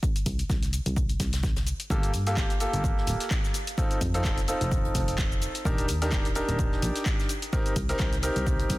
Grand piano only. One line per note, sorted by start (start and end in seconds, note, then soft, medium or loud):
1.90 2.09 A#3 medium
1.90 2.09 F4 medium
1.90 2.09 G4 medium
1.90 2.09 A4 medium
2.27 2.35 A#3 medium
2.27 2.35 F4 medium
2.27 2.35 G4 medium
2.27 2.35 A4 medium
2.37 2.50 A#3 medium
2.37 2.50 F4 medium
2.37 2.50 G4 medium
2.37 2.50 A4 medium
2.61 3.53 A#3 medium
2.61 3.53 F4 medium
2.61 3.53 G4 medium
2.61 3.53 A4 medium
3.78 3.97 C4 medium
3.78 3.97 D#4 medium
3.78 3.97 F4 medium
3.78 3.97 A4 loud
4.14 4.22 C4 medium
4.14 4.22 D#4 medium
4.14 4.22 F4 medium
4.14 4.22 A4 loud
4.25 4.38 C4 medium
4.25 4.38 D#4 medium
4.25 4.38 F4 medium
4.25 4.38 A4 loud
4.48 5.63 C4 medium
4.48 5.63 D#4 medium
4.48 5.63 F4 medium
4.48 5.63 A4 medium
5.65 5.84 D4 medium
5.65 5.84 D#4 medium
5.65 5.84 G4 medium
5.65 5.84 A#4 loud
6.02 6.10 D4 medium
6.02 6.10 D#4 medium
6.02 6.10 G4 medium
6.02 6.10 A#4 medium
6.12 6.25 D4 medium
6.12 6.25 D#4 medium
6.12 6.25 G4 medium
6.12 6.25 A#4 medium
6.36 7.28 D4 medium
6.36 7.28 D#4 medium
6.36 7.28 G4 medium
6.36 7.28 A#4 medium
7.53 7.72 C4 medium
7.53 7.72 D#4 medium
7.53 7.72 G4 medium
7.53 7.72 A#4 loud
7.89 7.97 C4 medium
7.89 7.97 D#4 medium
7.89 7.97 G4 medium
7.89 7.97 A#4 loud
8.00 8.13 C4 medium
8.23 8.78 C4 medium
8.23 8.78 D#4 medium
8.23 8.78 G4 medium
8.23 8.78 A#4 medium